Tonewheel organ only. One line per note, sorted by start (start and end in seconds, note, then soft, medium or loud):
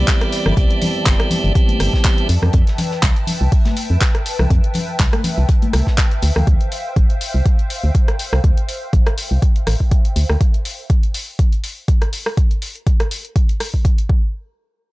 0.00 0.54 E3 medium
0.00 0.54 G3 medium
0.00 0.54 B3 medium
0.00 0.55 C4 medium
0.00 0.55 G4 loud
0.57 1.52 E3 medium
0.57 1.53 G3 medium
0.57 1.53 B3 medium
0.57 1.53 C4 medium
0.57 1.53 G4 loud
1.55 2.28 E3 medium
1.55 2.28 G3 medium
1.55 2.28 B3 medium
1.55 2.28 C4 medium
1.55 2.28 G4 loud